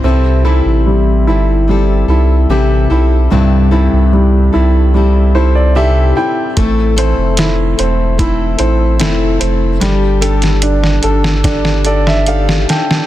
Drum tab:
HH |----------------|----------------|x-x-x-x-x-x-x-x-|x-xxx-x-x-x-x-x-|
SD |----------------|----------------|----o-------o---|o--o-o-ooo-o-ooo|
BD |----------------|----------------|o-------o-------|--------o-------|